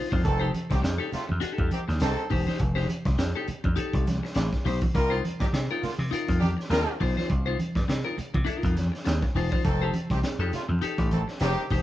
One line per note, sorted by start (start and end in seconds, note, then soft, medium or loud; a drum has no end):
0.10 0.23 F2 loud
0.10 0.22 D#4 medium
0.10 0.23 F4 medium
0.10 0.23 C5 medium
0.10 kick loud
0.10 high conga medium
0.23 0.50 F1 loud
0.23 0.48 D#3 loud
0.23 0.48 C4 loud
0.23 0.48 A4 loud
0.23 muted clean electric guitar stroke soft
0.23 kick loud
0.23 closed hi-hat medium
0.23 muted conga soft
0.40 0.51 D#4 medium
0.40 0.51 G4 medium
0.40 0.53 C5 medium
0.52 muted clean electric guitar stroke medium
0.52 closed hi-hat medium
0.52 muted conga soft
0.52 high conga medium
0.70 0.82 C2 medium
0.70 0.79 D#3 medium
0.70 0.78 C4 medium
0.70 0.78 G4 medium
0.70 muted clean electric guitar stroke medium
0.70 kick loud
0.70 snare soft
0.70 closed hi-hat medium
0.70 high conga medium
0.82 0.97 F2 loud
0.82 muted clean electric guitar stroke soft
0.82 snare loud
0.82 closed hi-hat medium
0.98 1.10 D#4 medium
0.98 1.11 G4 medium
0.98 1.11 A4 medium
1.11 1.23 C3 medium
1.11 1.23 A3 medium
1.11 1.23 F4 medium
1.11 muted clean electric guitar stroke soft
1.11 muted slap bass stroke soft
1.11 snare soft
1.11 closed hi-hat medium
1.11 muted conga soft
1.11 low conga medium
1.27 1.41 F2 loud
1.27 muted clean electric guitar stroke soft
1.27 high conga medium
1.40 1.52 D4 medium
1.40 1.53 F#4 loud
1.40 1.53 G#4 loud
1.40 muted slap bass stroke medium
1.40 closed hi-hat medium
1.40 muted conga soft
1.52 1.68 D#4 medium
1.52 1.69 G4 loud
1.52 1.69 A4 loud
1.58 1.69 F2 loud
1.58 kick medium
1.71 1.82 D#3 medium
1.71 1.82 C4 medium
1.71 1.82 G4 medium
1.71 muted clean electric guitar stroke soft
1.71 closed hi-hat medium
1.71 high conga medium
1.88 1.99 D#2 medium
1.88 muted clean electric guitar stroke medium
1.88 snare soft
2.00 2.15 C2 medium
2.00 2.25 D#3 loud
2.00 2.25 C4 loud
2.00 2.25 A4 loud
2.00 muted clean electric guitar stroke soft
2.00 snare loud
2.00 closed hi-hat medium
2.17 muted clean electric guitar stroke soft
2.30 2.44 E1 medium
2.30 2.46 D#4 medium
2.30 2.46 G4 medium
2.30 2.45 C5 medium
2.30 kick medium
2.30 open hi-hat medium
2.30 low conga medium
2.47 2.58 D#4 medium
2.47 2.59 G4 medium
2.47 2.59 C5 medium
2.47 snare soft
2.47 high conga medium
2.59 2.85 F1 loud
2.59 muted clean electric guitar stroke soft
2.59 kick medium
2.59 closed hi-hat medium
2.75 2.87 D#4 medium
2.75 2.87 G4 medium
2.75 2.89 C5 medium
2.75 snare soft
2.88 muted clean electric guitar stroke medium
2.88 closed hi-hat medium
2.88 muted conga soft
2.88 high conga medium
3.05 3.16 C2 medium
3.05 muted clean electric guitar stroke soft
3.05 kick loud
3.05 snare soft
3.05 closed hi-hat medium
3.05 high conga medium
3.18 3.32 F2 loud
3.18 muted clean electric guitar stroke soft
3.18 snare loud
3.18 closed hi-hat medium
3.18 muted conga soft
3.36 3.47 D#4 medium
3.36 3.47 G4 medium
3.36 3.48 A4 medium
3.48 muted clean electric guitar stroke soft
3.48 muted slap bass stroke soft
3.48 closed hi-hat medium
3.48 muted conga soft
3.48 low conga medium
3.64 3.75 F2 loud
3.64 muted clean electric guitar stroke soft
3.64 kick loud
3.64 high conga medium
3.76 4.04 D#4 medium
3.76 4.04 G4 medium
3.76 4.05 A4 medium
3.76 muted slap bass stroke medium
3.76 closed hi-hat medium
3.76 muted conga soft
3.93 4.19 C2 medium
3.93 kick loud
3.93 closed hi-hat medium
4.06 muted clean electric guitar stroke medium
4.06 snare soft
4.06 closed hi-hat medium
4.06 muted conga soft
4.06 high conga medium
4.23 muted clean electric guitar stroke medium
4.23 snare soft
4.35 4.50 A1 loud
4.35 muted clean electric guitar stroke medium
4.35 snare loud
4.35 closed hi-hat medium
4.53 kick medium
4.53 snare soft
4.65 4.79 B1 medium
4.65 4.81 D#4 medium
4.65 4.82 G4 medium
4.65 4.82 C5 medium
4.65 open hi-hat medium
4.65 muted conga soft
4.65 low conga medium
4.82 muted clean electric guitar stroke soft
4.82 kick loud
4.82 high conga medium
4.94 5.20 C2 loud
4.94 5.18 G3 loud
4.94 5.19 F4 loud
4.94 5.18 A#4 loud
4.94 muted clean electric guitar stroke soft
4.94 kick medium
4.94 closed hi-hat medium
4.94 muted conga soft
5.10 5.23 D#4 medium
5.10 5.23 F4 medium
5.10 5.24 C5 medium
5.24 muted clean electric guitar stroke soft
5.24 closed hi-hat medium
5.24 muted conga soft
5.24 high conga medium
5.39 5.51 G2 loud
5.39 5.47 D#3 medium
5.39 5.47 D4 medium
5.39 5.48 G4 medium
5.39 muted clean electric guitar stroke soft
5.39 kick loud
5.39 snare soft
5.39 closed hi-hat soft
5.39 high conga medium
5.53 5.67 C3 loud
5.53 muted clean electric guitar stroke soft
5.53 snare loud
5.53 closed hi-hat medium
5.53 muted conga soft
5.71 5.82 D#4 medium
5.71 5.83 F4 medium
5.71 5.84 A#4 medium
5.82 5.92 D3 medium
5.82 5.92 A#3 medium
5.82 5.92 F4 medium
5.82 muted slap bass stroke soft
5.82 muted clean electric guitar stroke soft
5.82 snare soft
5.82 open hi-hat medium
5.82 muted conga soft
5.82 low conga medium
5.99 6.10 C3 loud
5.99 muted clean electric guitar stroke medium
5.99 high conga medium
6.11 6.39 D#4 loud
6.11 6.40 F4 medium
6.11 6.40 A#4 medium
6.11 muted slap bass stroke medium
6.11 closed hi-hat medium
6.11 muted conga soft
6.28 6.53 F2 medium
6.28 kick medium
6.28 closed hi-hat medium
6.40 6.51 D#3 medium
6.40 6.50 D4 medium
6.40 6.51 G4 loud
6.40 muted clean electric guitar stroke soft
6.40 closed hi-hat medium
6.40 muted conga soft
6.40 high conga loud
6.57 muted clean electric guitar stroke soft
6.57 snare soft
6.70 6.84 D#2 loud
6.70 6.94 G3 loud
6.70 6.94 F4 loud
6.70 6.94 A#4 loud
6.70 muted clean electric guitar stroke soft
6.70 snare loud
6.70 closed hi-hat medium
6.70 muted conga soft
6.88 muted clean electric guitar stroke soft
7.00 7.15 B1 medium
7.00 7.17 D#4 medium
7.00 7.17 F4 medium
7.00 7.16 C5 medium
7.00 kick medium
7.00 open hi-hat medium
7.00 muted conga soft
7.00 low conga medium
7.17 7.29 D#4 soft
7.17 7.29 F4 medium
7.17 7.30 C5 medium
7.17 snare soft
7.17 high conga medium
7.30 7.55 C2 loud
7.30 kick medium
7.30 closed hi-hat medium
7.30 muted conga soft
7.46 7.57 D#4 medium
7.46 7.58 F4 medium
7.46 7.59 C5 loud
7.58 muted clean electric guitar stroke soft
7.58 closed hi-hat medium
7.58 muted conga soft
7.58 high conga medium
7.75 7.86 G2 medium
7.75 muted clean electric guitar stroke medium
7.75 kick medium
7.75 snare soft
7.75 closed hi-hat medium
7.75 high conga medium
7.88 8.03 C3 loud
7.88 muted clean electric guitar stroke soft
7.88 snare loud
7.88 closed hi-hat medium
8.05 8.16 D#4 medium
8.05 8.17 F4 medium
8.05 8.17 A#4 medium
8.17 muted clean electric guitar stroke soft
8.17 muted slap bass stroke soft
8.17 closed hi-hat medium
8.17 muted conga soft
8.17 low conga medium
8.34 8.45 C3 loud
8.34 muted clean electric guitar stroke soft
8.34 kick loud
8.34 high conga medium
8.45 8.57 D4 medium
8.45 8.58 E4 loud
8.45 8.58 A4 loud
8.45 muted slap bass stroke soft
8.45 closed hi-hat medium
8.45 muted conga soft
8.57 8.73 D#4 medium
8.57 8.74 F4 loud
8.57 8.74 A#4 loud
8.63 8.89 F2 medium
8.63 kick loud
8.63 closed hi-hat medium
8.75 muted clean electric guitar stroke medium
8.75 snare soft
8.75 closed hi-hat medium
8.75 high conga medium
8.92 muted clean electric guitar stroke soft
8.92 snare soft
9.05 9.20 D#2 medium
9.05 muted clean electric guitar stroke soft
9.05 snare loud
9.05 closed hi-hat loud
9.05 muted conga soft
9.22 muted clean electric guitar stroke medium
9.22 kick medium
9.22 snare soft
9.35 9.49 E1 loud
9.35 9.51 D#4 medium
9.35 9.51 F4 medium
9.35 9.50 C5 medium
9.35 open hi-hat medium
9.35 low conga medium
9.51 9.63 D#4 medium
9.51 9.64 F4 medium
9.51 9.64 C5 medium
9.51 kick loud
9.51 high conga medium
9.64 9.90 F1 medium
9.64 9.88 D#3 loud
9.64 9.88 C4 loud
9.64 9.88 A4 loud
9.64 muted clean electric guitar stroke soft
9.64 kick loud
9.64 closed hi-hat medium
9.64 muted conga soft
9.82 9.93 D#4 medium
9.82 9.94 G4 medium
9.82 9.95 C5 medium
9.94 muted clean electric guitar stroke soft
9.94 closed hi-hat medium
9.94 muted conga soft
9.94 high conga medium
10.10 10.22 C2 medium
10.10 10.19 D#3 medium
10.10 10.20 C4 medium
10.10 10.19 G4 medium
10.10 muted clean electric guitar stroke soft
10.10 kick medium
10.10 snare soft
10.10 closed hi-hat medium
10.10 high conga medium
10.23 muted slap bass stroke soft
10.23 muted clean electric guitar stroke soft
10.23 snare medium
10.23 closed hi-hat medium
10.23 muted conga soft
10.39 10.50 F2 loud
10.39 10.52 D#4 medium
10.39 10.53 G4 medium
10.39 10.53 A4 medium
10.53 10.64 C3 medium
10.53 10.64 A3 medium
10.53 10.64 F4 medium
10.53 muted clean electric guitar stroke soft
10.53 snare soft
10.53 closed hi-hat medium
10.53 muted conga soft
10.53 low conga medium
10.69 10.80 F2 loud
10.69 muted clean electric guitar stroke soft
10.69 high conga medium
10.82 11.09 D#4 medium
10.82 11.10 G4 medium
10.82 11.10 A4 medium
10.82 muted slap bass stroke medium
10.82 closed hi-hat medium
10.98 11.23 A1 medium
10.98 kick loud
10.98 closed hi-hat medium
11.11 11.22 D#3 medium
11.11 11.22 C4 medium
11.11 11.22 A4 medium
11.11 muted clean electric guitar stroke soft
11.11 closed hi-hat medium
11.11 muted conga soft
11.11 high conga medium
11.28 muted clean electric guitar stroke soft
11.28 snare soft
11.40 11.55 F1 loud
11.40 11.65 D#3 loud
11.40 11.64 C4 loud
11.40 11.65 G4 loud
11.40 muted clean electric guitar stroke soft
11.40 snare medium
11.40 closed hi-hat loud
11.58 muted clean electric guitar stroke soft
11.70 11.82 E1 loud
11.70 11.82 D#4 medium
11.70 11.82 G4 medium
11.70 11.82 C5 medium
11.70 kick medium
11.70 open hi-hat medium
11.70 muted conga soft
11.70 low conga medium